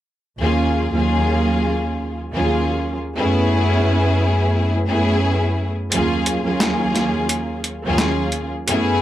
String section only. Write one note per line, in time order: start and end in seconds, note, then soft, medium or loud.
0.39 0.89 D#2 medium
0.39 0.89 F#3 medium
0.39 0.89 A#3 medium
0.39 0.90 C#4 medium
0.39 0.90 F4 medium
0.39 0.90 G#4 loud
0.92 2.18 D#2 loud
0.92 2.18 F#3 medium
0.92 2.18 A#3 medium
0.92 2.19 C#4 medium
0.92 2.19 F4 medium
0.92 2.19 G#4 loud
2.33 2.95 D#2 medium
2.33 2.95 F#3 medium
2.33 2.95 A#3 medium
2.33 2.96 C#4 medium
2.33 2.96 F4 medium
2.33 2.96 G#4 loud
3.15 4.76 F#2 loud
3.15 4.76 A3 loud
3.15 4.76 B3 loud
3.15 4.77 C#4 loud
3.15 4.77 E4 loud
3.15 4.77 G#4 loud
4.86 5.68 F#2 loud
4.86 5.68 A3 medium
4.86 5.68 B3 medium
4.86 5.69 C#4 medium
4.86 5.69 E4 medium
4.86 5.69 G#4 loud
5.91 6.41 D#2 medium
5.91 6.41 F#3 medium
5.91 6.41 A#3 medium
5.91 6.42 C#4 medium
5.91 6.42 F4 medium
5.91 6.42 G#4 loud
6.43 7.70 D#2 loud
6.43 7.70 F#3 medium
6.43 7.70 A#3 loud
6.43 7.70 C#4 medium
6.43 7.71 F4 medium
6.43 7.71 G#4 loud
7.85 8.47 D#2 medium
7.85 8.47 F#3 medium
7.85 8.47 A#3 medium
7.85 8.48 C#4 medium
7.85 8.48 F4 medium
7.85 8.48 G#4 loud
8.67 9.02 F#2 loud
8.67 9.02 A3 loud
8.67 9.02 B3 loud
8.67 9.02 C#4 loud
8.67 9.02 E4 loud
8.67 9.02 G#4 loud